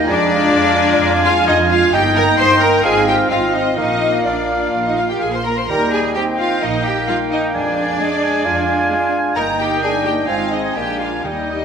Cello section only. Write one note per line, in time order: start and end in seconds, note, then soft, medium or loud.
0.08 1.22 D4 loud
1.24 1.32 F4 loud
1.47 1.55 D#4 medium
1.70 1.92 F4 loud
1.93 2.01 G4 loud
2.15 2.23 A#4 loud
2.38 2.60 C5 loud
2.61 2.83 A#4 loud
2.84 3.07 G#4 loud
3.07 3.15 G4 medium
3.29 3.53 F4 medium
3.53 3.61 D#4 medium
3.77 4.24 D#4 medium
4.26 4.85 D4 medium
4.87 4.98 D#4 medium
4.98 5.10 F4 medium
5.11 5.22 G4 medium
5.21 5.33 G#4 medium
5.34 5.46 C5 medium
5.45 5.57 A#4 medium
5.58 5.69 C5 medium
5.68 5.92 A#4 medium
5.92 6.15 G#4 medium
6.15 6.23 G4 medium
6.38 6.61 F4 medium
6.61 6.84 D#4 medium
6.84 7.07 G4 medium
7.07 7.15 F4 medium
7.31 7.53 D#4 medium
7.54 9.10 D4 medium
9.36 9.44 A#4 medium
9.59 9.81 G4 medium
9.82 9.90 G#4 medium
10.04 10.12 G4 medium
10.27 10.51 F4 medium
10.51 10.75 D#4 medium
10.75 10.99 G4 medium
11.00 11.25 F4 medium
11.24 11.65 D#4 medium